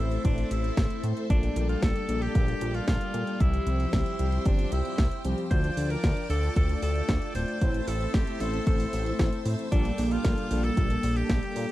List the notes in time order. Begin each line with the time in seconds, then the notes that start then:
Already playing: E4 A4 C5 E5 C6
0.00 A1 A3 C4 E4 C5
0.11 closed hi-hat
0.25 A1 D4, kick, closed hi-hat
0.38 closed hi-hat
0.51 A1 E4, closed hi-hat
0.64 closed hi-hat
0.77 A1, kick, snare, closed hi-hat
0.90 closed hi-hat
1.03 A2, closed hi-hat
1.17 closed hi-hat
1.30 A#1 G3 A#3 D4 A4 D5 G5, kick, closed hi-hat
1.43 closed hi-hat
1.56 A#1, closed hi-hat
1.69 F4, closed hi-hat
1.82 A#1 A4, kick, snare, closed hi-hat
1.96 closed hi-hat
2.09 A#1 G3 A#3 D4 A4, closed hi-hat
2.22 G4, closed hi-hat
2.35 A#1, kick, closed hi-hat
2.48 closed hi-hat
2.61 A#1, closed hi-hat
2.75 F4, closed hi-hat
2.88 A#1 F4, kick, snare, closed hi-hat
3.01 closed hi-hat
3.14 A#2, closed hi-hat
3.27 closed hi-hat
3.40 C2 F3 G3 C4 E4 G4 C5 G5 C6, kick, closed hi-hat
3.54 closed hi-hat
3.66 C2, closed hi-hat
3.80 closed hi-hat
3.93 C2 E4, kick, snare, closed hi-hat
4.06 closed hi-hat
4.19 C2 F3 G3 C4 G4, closed hi-hat
4.32 closed hi-hat
4.45 G1 D4, kick, closed hi-hat
4.59 closed hi-hat
4.72 C2 E4, closed hi-hat
4.85 F3 G3 C4 G4, closed hi-hat
4.98 C2, kick, snare, closed hi-hat
5.11 closed hi-hat
5.24 C2 F3 G3 C4 G4, closed hi-hat
5.38 closed hi-hat
5.51 D2 F3 D4 F4 C5 D5 A5 D6, kick, closed hi-hat
5.64 closed hi-hat
5.77 D2, open hi-hat
5.90 A#4, closed hi-hat
6.04 D2, kick, snare, closed hi-hat
6.17 closed hi-hat
6.30 D2 A3 D4 F4 A4 D5, open hi-hat
6.43 closed hi-hat
6.56 D2 A4, kick, closed hi-hat
6.69 closed hi-hat
6.82 D2 A4, open hi-hat
6.95 closed hi-hat
7.09 D2, kick, snare, closed hi-hat
7.22 closed hi-hat
7.35 D1 C5, open hi-hat
7.48 closed hi-hat
7.61 A1 A3 C4 E4 C5 E5 A5 E6, kick, closed hi-hat
7.74 closed hi-hat
7.88 A1 A4, open hi-hat
8.01 closed hi-hat
8.14 A1 G4, kick, snare, closed hi-hat
8.27 closed hi-hat
8.40 A1 A3 C4 E4 A4 C5, open hi-hat
8.54 closed hi-hat
8.67 A1 A4, kick, closed hi-hat
8.80 open hi-hat
8.93 A1, open hi-hat
9.06 closed hi-hat
9.19 A1, kick, snare, closed hi-hat
9.33 closed hi-hat
9.46 A2, open hi-hat
9.59 closed hi-hat
9.72 A#1 G3 A#3 D4 A4 G5 A5 D6, kick, closed hi-hat
9.85 closed hi-hat
9.98 A#1, open hi-hat
10.11 F4, closed hi-hat
10.24 A#1, kick, snare, closed hi-hat
10.38 closed hi-hat
10.51 A#1 G3 A#3 D4 A4, open hi-hat
10.64 A4, closed hi-hat
10.77 A#1, kick, closed hi-hat
10.90 closed hi-hat
11.03 A#1, open hi-hat
11.16 G4, closed hi-hat
11.30 A#1, kick, snare, closed hi-hat
11.43 closed hi-hat
11.56 A#2, open hi-hat